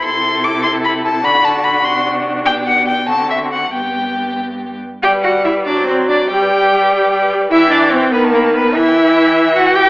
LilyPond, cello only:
\new Staff \with { instrumentName = "Cello" } { \time 6/8 \key g \major \tempo 4. = 98 c2. | d4. c4. | b,4. d4. | g,2~ g,8 r8 |
g'8 fis'8 e'8 d'8 c'8 d'8 | g'2~ g'8 r8 | e'8 d'8 c'8 b8 bes8 b8 | e'2 fis'8 g'8 | }